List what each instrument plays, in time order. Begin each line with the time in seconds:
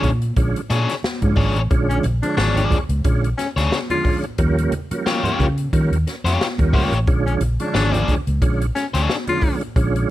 Already playing: tonewheel organ D3 F3 G#3 C#4
0.03 fingered electric bass A#2, kick, closed hi-hat, muted conga, high conga, low conga
0.22 closed hi-hat
0.36 fingered electric bass A#1, tonewheel organ D3 F3 G#3 C#4, kick, closed hi-hat
0.56 closed hi-hat
0.70 fingered electric bass A#2, tonewheel organ G#3 C#4, overdriven electric guitar D4 G#4 C#5, snare, closed hi-hat
0.89 snare, closed hi-hat
1.03 snare, muted conga
1.22 fingered electric bass G#2, tonewheel organ D3 F3 G#3 C#4, kick, closed hi-hat, high conga
1.36 fingered electric bass G#1, overdriven electric guitar D4 G#4 C#5, kick, open hi-hat, muted conga, low conga
1.56 fingered electric bass A1, closed hi-hat
1.70 fingered electric bass A#1, tonewheel organ D3 F3 G#3 C#4, kick, closed hi-hat, muted conga
1.89 baritone saxophone C#4, closed hi-hat
2.03 fingered electric bass A#1, closed hi-hat, muted conga, high conga
2.23 tonewheel organ D3 F3 G#3 C4, baritone saxophone D4, closed hi-hat
2.29 tonewheel organ C#5
2.37 fingered electric bass G#1, overdriven electric guitar D4 G#4 C#5, baritone saxophone D4, snare, muted conga
2.55 overdriven electric guitar D4 G#4 D5, closed hi-hat, low conga
2.70 kick, closed hi-hat, muted conga, high conga, low conga
2.89 fingered electric bass C#2, closed hi-hat
3.04 fingered electric bass A#1, tonewheel organ D3 F3 G#3 C#4, kick, closed hi-hat, muted conga
3.24 closed hi-hat
3.37 tonewheel organ G#3 C#4, baritone saxophone C#4, snare, closed hi-hat, muted conga
3.56 fingered electric bass D2, overdriven electric guitar D4 G#4 C#5, snare, closed hi-hat
3.71 snare, muted conga
3.90 tonewheel organ D3 F3 G#3 C#4, baritone saxophone F4, closed hi-hat, high conga
4.04 kick, open hi-hat, low conga
4.23 closed hi-hat
4.38 fingered electric bass D#2, tonewheel organ F3 G3 A#3 C#4, kick, closed hi-hat
4.58 closed hi-hat
4.72 closed hi-hat, muted conga, high conga
4.91 tonewheel organ F3 F#3 A#3 C#4, muted fingered electric bass stroke, closed hi-hat
4.98 tonewheel organ G3
5.06 overdriven electric guitar F4 G4 C#5, snare
5.23 overdriven electric guitar F4 G4 C#5, closed hi-hat, low conga
5.39 fingered electric bass C#3, kick, closed hi-hat, muted conga, high conga, low conga
5.58 closed hi-hat
5.73 fingered electric bass D#3, tonewheel organ F3 G3 A#3 C#4, kick, closed hi-hat, muted conga
5.91 fingered electric bass D#2, closed hi-hat
6.07 tonewheel organ A#3 C#4, snare, closed hi-hat
6.24 fingered electric bass F2, overdriven electric guitar F4 G4 C#5, snare, closed hi-hat
6.41 snare
6.58 fingered electric bass D#2, tonewheel organ F3 G3 A#3 C#4, kick, closed hi-hat, high conga
6.73 fingered electric bass C#2, overdriven electric guitar F4 G4 C#5, kick, open hi-hat, low conga
6.92 fingered electric bass A1, closed hi-hat
7.07 fingered electric bass A#1, tonewheel organ D3 F3 G#3 C#4, kick, closed hi-hat, muted conga
7.26 baritone saxophone C#4, closed hi-hat
7.41 fingered electric bass A#1, closed hi-hat, high conga
7.60 tonewheel organ C#3 F3 G#3 C#5, baritone saxophone D4, closed hi-hat
7.67 tonewheel organ D3
7.74 fingered electric bass G#1, overdriven electric guitar D4 G#4 C#5, baritone saxophone D4, snare
7.92 overdriven electric guitar D4 G#4 D5, closed hi-hat, low conga
8.08 kick, closed hi-hat, muted conga, high conga, low conga
8.27 fingered electric bass C#2, closed hi-hat
8.42 fingered electric bass A#1, tonewheel organ D3 F3 G#3 C#4, kick, closed hi-hat, muted conga
8.62 closed hi-hat
8.75 tonewheel organ G#3 C#4, baritone saxophone C#4, snare, closed hi-hat
8.94 fingered electric bass D2, overdriven electric guitar D4 G#4 C#5, snare, closed hi-hat
9.10 snare
9.27 tonewheel organ D3 F3 G#3 C#4, baritone saxophone F4, closed hi-hat, high conga
9.41 kick, open hi-hat, low conga
9.61 closed hi-hat
9.76 fingered electric bass A#1, tonewheel organ D3 F3 G#3 C#4, kick, closed hi-hat
9.96 closed hi-hat